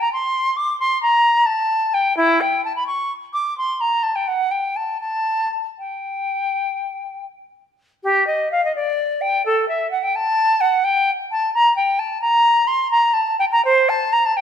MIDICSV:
0, 0, Header, 1, 2, 480
1, 0, Start_track
1, 0, Key_signature, -2, "minor"
1, 0, Tempo, 448430
1, 1788, Tempo, 483871
1, 2279, Time_signature, 12, 3, 24, 8
1, 2748, Tempo, 462250
1, 4188, Tempo, 502092
1, 8028, Tempo, 464396
1, 13308, Tempo, 484262
1, 14557, End_track
2, 0, Start_track
2, 0, Title_t, "Flute"
2, 0, Program_c, 0, 73
2, 7, Note_on_c, 0, 82, 82
2, 115, Note_off_c, 0, 82, 0
2, 130, Note_on_c, 0, 84, 96
2, 600, Note_on_c, 0, 86, 86
2, 616, Note_off_c, 0, 84, 0
2, 836, Note_off_c, 0, 86, 0
2, 849, Note_on_c, 0, 84, 100
2, 1072, Note_off_c, 0, 84, 0
2, 1091, Note_on_c, 0, 82, 97
2, 1555, Note_on_c, 0, 81, 95
2, 1571, Note_off_c, 0, 82, 0
2, 2049, Note_on_c, 0, 79, 85
2, 2064, Note_off_c, 0, 81, 0
2, 2272, Note_off_c, 0, 79, 0
2, 2278, Note_on_c, 0, 64, 109
2, 2516, Note_on_c, 0, 79, 85
2, 2531, Note_off_c, 0, 64, 0
2, 2747, Note_off_c, 0, 79, 0
2, 2752, Note_on_c, 0, 81, 79
2, 2863, Note_off_c, 0, 81, 0
2, 2869, Note_on_c, 0, 83, 79
2, 2973, Note_off_c, 0, 83, 0
2, 2980, Note_on_c, 0, 85, 92
2, 3245, Note_off_c, 0, 85, 0
2, 3463, Note_on_c, 0, 86, 87
2, 3702, Note_off_c, 0, 86, 0
2, 3717, Note_on_c, 0, 84, 96
2, 3954, Note_on_c, 0, 82, 86
2, 3970, Note_off_c, 0, 84, 0
2, 4188, Note_on_c, 0, 81, 79
2, 4202, Note_off_c, 0, 82, 0
2, 4307, Note_on_c, 0, 79, 75
2, 4322, Note_off_c, 0, 81, 0
2, 4424, Note_on_c, 0, 78, 82
2, 4438, Note_off_c, 0, 79, 0
2, 4648, Note_on_c, 0, 79, 67
2, 4662, Note_off_c, 0, 78, 0
2, 4888, Note_on_c, 0, 81, 70
2, 4902, Note_off_c, 0, 79, 0
2, 5115, Note_off_c, 0, 81, 0
2, 5121, Note_on_c, 0, 81, 82
2, 5592, Note_off_c, 0, 81, 0
2, 5868, Note_on_c, 0, 79, 61
2, 7272, Note_off_c, 0, 79, 0
2, 8016, Note_on_c, 0, 67, 93
2, 8251, Note_off_c, 0, 67, 0
2, 8257, Note_on_c, 0, 75, 81
2, 8507, Note_off_c, 0, 75, 0
2, 8512, Note_on_c, 0, 77, 81
2, 8636, Note_off_c, 0, 77, 0
2, 8650, Note_on_c, 0, 75, 76
2, 8753, Note_off_c, 0, 75, 0
2, 8759, Note_on_c, 0, 74, 85
2, 9232, Note_on_c, 0, 79, 88
2, 9248, Note_off_c, 0, 74, 0
2, 9475, Note_off_c, 0, 79, 0
2, 9484, Note_on_c, 0, 69, 90
2, 9714, Note_off_c, 0, 69, 0
2, 9720, Note_on_c, 0, 76, 84
2, 9950, Note_off_c, 0, 76, 0
2, 9956, Note_on_c, 0, 78, 79
2, 10079, Note_on_c, 0, 79, 87
2, 10095, Note_off_c, 0, 78, 0
2, 10207, Note_on_c, 0, 81, 95
2, 10223, Note_off_c, 0, 79, 0
2, 10674, Note_on_c, 0, 78, 90
2, 10689, Note_off_c, 0, 81, 0
2, 10918, Note_on_c, 0, 79, 96
2, 10933, Note_off_c, 0, 78, 0
2, 11185, Note_off_c, 0, 79, 0
2, 11405, Note_on_c, 0, 81, 93
2, 11636, Note_off_c, 0, 81, 0
2, 11641, Note_on_c, 0, 82, 108
2, 11865, Note_off_c, 0, 82, 0
2, 11871, Note_on_c, 0, 79, 80
2, 12105, Note_on_c, 0, 81, 81
2, 12120, Note_off_c, 0, 79, 0
2, 12329, Note_off_c, 0, 81, 0
2, 12335, Note_on_c, 0, 82, 100
2, 12809, Note_on_c, 0, 84, 93
2, 12825, Note_off_c, 0, 82, 0
2, 13050, Note_off_c, 0, 84, 0
2, 13057, Note_on_c, 0, 82, 108
2, 13286, Note_on_c, 0, 81, 90
2, 13301, Note_off_c, 0, 82, 0
2, 13537, Note_off_c, 0, 81, 0
2, 13543, Note_on_c, 0, 79, 96
2, 13603, Note_off_c, 0, 79, 0
2, 13668, Note_on_c, 0, 82, 99
2, 13790, Note_off_c, 0, 82, 0
2, 13796, Note_on_c, 0, 72, 110
2, 14037, Note_on_c, 0, 81, 102
2, 14051, Note_off_c, 0, 72, 0
2, 14272, Note_on_c, 0, 82, 105
2, 14287, Note_off_c, 0, 81, 0
2, 14398, Note_on_c, 0, 81, 95
2, 14413, Note_off_c, 0, 82, 0
2, 14509, Note_on_c, 0, 79, 106
2, 14524, Note_off_c, 0, 81, 0
2, 14557, Note_off_c, 0, 79, 0
2, 14557, End_track
0, 0, End_of_file